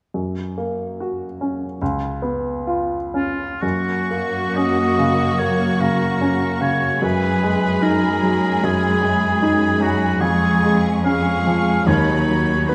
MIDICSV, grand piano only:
0, 0, Header, 1, 2, 480
1, 0, Start_track
1, 0, Key_signature, 6, "major"
1, 0, Tempo, 847458
1, 78, Time_signature, 4, 2, 24, 8
1, 1514, Tempo, 944882
1, 2474, Tempo, 823045
1, 3914, Tempo, 795756
1, 5834, Tempo, 821918
1, 7314, End_track
2, 0, Start_track
2, 0, Title_t, "Grand piano"
2, 0, Program_c, 0, 0
2, 81, Note_on_c, 0, 42, 25
2, 190, Control_c, 0, 64, 127
2, 326, Note_on_c, 0, 58, 22
2, 569, Note_on_c, 0, 66, 25
2, 701, Note_off_c, 0, 58, 0
2, 799, Note_on_c, 0, 61, 26
2, 934, Note_off_c, 0, 66, 0
2, 1002, Note_off_c, 0, 42, 0
2, 1027, Note_off_c, 0, 61, 0
2, 1029, Note_on_c, 0, 37, 41
2, 1034, Control_c, 0, 64, 0
2, 1115, Control_c, 0, 64, 127
2, 1259, Note_on_c, 0, 59, 28
2, 1513, Note_on_c, 0, 65, 36
2, 1655, Note_off_c, 0, 59, 0
2, 1751, Note_on_c, 0, 61, 31
2, 1904, Note_off_c, 0, 65, 0
2, 1980, Note_off_c, 0, 37, 0
2, 1996, Note_off_c, 0, 61, 0
2, 1998, Note_on_c, 0, 42, 32
2, 2009, Control_c, 0, 64, 0
2, 2114, Control_c, 0, 64, 127
2, 2243, Note_on_c, 0, 58, 27
2, 2476, Note_on_c, 0, 61, 26
2, 2628, Note_off_c, 0, 58, 0
2, 2721, Note_on_c, 0, 49, 31
2, 2866, Note_off_c, 0, 61, 0
2, 2937, Note_off_c, 0, 42, 0
2, 2959, Note_on_c, 0, 58, 33
2, 3104, Note_off_c, 0, 49, 0
2, 3198, Note_on_c, 0, 49, 27
2, 3340, Note_off_c, 0, 58, 0
2, 3436, Note_on_c, 0, 61, 34
2, 3577, Note_off_c, 0, 49, 0
2, 3667, Note_on_c, 0, 49, 30
2, 3819, Note_off_c, 0, 61, 0
2, 3907, Note_on_c, 0, 42, 38
2, 3911, Note_off_c, 0, 49, 0
2, 3926, Control_c, 0, 64, 0
2, 4007, Control_c, 0, 64, 127
2, 4156, Note_on_c, 0, 56, 33
2, 4390, Note_on_c, 0, 63, 32
2, 4539, Note_off_c, 0, 56, 0
2, 4636, Note_on_c, 0, 54, 37
2, 4779, Note_off_c, 0, 63, 0
2, 4851, Note_off_c, 0, 42, 0
2, 4881, Note_on_c, 0, 42, 42
2, 5025, Note_off_c, 0, 54, 0
2, 5110, Note_on_c, 0, 56, 32
2, 5356, Note_on_c, 0, 63, 36
2, 5497, Note_off_c, 0, 56, 0
2, 5582, Note_on_c, 0, 54, 37
2, 5736, Note_off_c, 0, 63, 0
2, 5810, Note_off_c, 0, 42, 0
2, 5826, Note_off_c, 0, 54, 0
2, 5830, Note_on_c, 0, 41, 37
2, 5844, Control_c, 0, 64, 0
2, 5934, Control_c, 0, 64, 127
2, 6076, Note_on_c, 0, 56, 33
2, 6317, Note_on_c, 0, 61, 32
2, 6473, Note_off_c, 0, 56, 0
2, 6567, Note_on_c, 0, 53, 33
2, 6704, Note_off_c, 0, 61, 0
2, 6777, Note_off_c, 0, 41, 0
2, 6800, Note_on_c, 0, 39, 50
2, 6802, Note_off_c, 0, 53, 0
2, 6813, Control_c, 0, 64, 0
2, 6898, Control_c, 0, 64, 127
2, 7046, Note_on_c, 0, 54, 26
2, 7281, Note_on_c, 0, 59, 32
2, 7314, Note_off_c, 0, 39, 0
2, 7314, Note_off_c, 0, 54, 0
2, 7314, Note_off_c, 0, 59, 0
2, 7314, End_track
0, 0, End_of_file